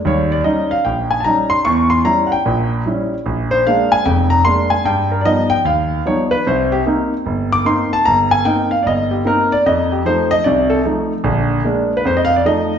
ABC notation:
X:1
M:4/4
L:1/16
Q:"Swing" 1/4=150
K:Bbmix
V:1 name="Grand piano"
_d2 =d2 e2 f2 g2 a2 [=ab]2 c'2 | ^c'2 =c'2 b2 [_g=g]4 z6 | z2 c2 f2 a2 g2 b2 c'2 a2 | g2 B2 [d^d]2 g2 f4 _d2 =B2 |
c2 G2 z6 d'2 c'2 =a2 | b2 a2 g2 f2 [de]2 G2 B2 d2 | e2 G2 c2 e2 d2 =A2 z4 | z6 z _c =c e f d e3 z |]
V:2 name="Grand piano"
[E,,G,]4 [G,_DE]2 z2 B,,,4 [G,DE]2 z2 | =E,,4 [G,^C=E]2 z2 [B,,,B,,]4 [G,CE]2 z2 | B,,,4 [A,B,D]2 z2 [F,,,F,,]4 [A,B,D]2 z2 | G,,4 [F,G,=B,^D]2 z2 ^D,,4 [F,G,B,D]2 z2 |
C,,4 [B,CE]2 z2 G,,,4 [B,CE]2 z2 | G,,,4 [B,CE]2 z2 G,,,4 [B,CE]2 z2 | F,,4 [F,=A,E]2 z2 [C,,C,]4 [F,A,E]2 z2 | [B,,,D,]4 [A,B,D]2 z2 F,,4 [F,=A,E]2 z2 |]